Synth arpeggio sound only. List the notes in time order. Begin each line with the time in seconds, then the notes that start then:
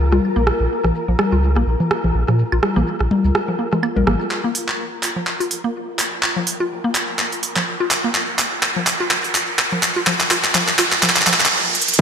0.12 F4
0.36 A#3
1.08 F3
1.32 F4
1.56 A#3
2.28 F3
2.52 F4
2.76 A#3
3.48 F3
3.59 A#3
3.72 G#3
3.83 A#3
3.96 A#4
4.07 A#3
4.44 A#3
5.16 F3
5.40 F4
5.64 A#3
6.36 F3
6.60 F4
6.84 A#3
7.56 F3
7.80 F4
8.04 A#3
8.76 F3
9.00 F4
9.72 F3
9.96 F4
10.07 F3
10.31 F4
10.55 F3
10.79 F4
11.03 F3
11.27 F3